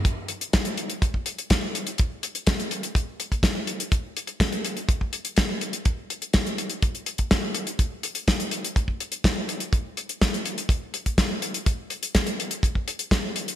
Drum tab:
HH |x-xxxxxxx-xxx-xx|x-xxxxxxx-xxx-xx|x-xxxxxxx-xxx-xx|x-xxxxxxxxxxx-xx|
SD |----o-------o---|----o-------o---|----o-------o---|----o-------o---|
BD |o---o---oo--o---|o---o---o--oo---|o---o---oo--o---|o---o---o--oo---|

HH |x-xxxxxxx-xxx-xx|x-xxxxxxx-xxx-xx|x-xxxxxxx-xxx-xx|
SD |----o-------o---|----o-------o---|----o-------o---|
BD |o---o---oo--o---|o---o---o--oo---|o---o---oo--o---|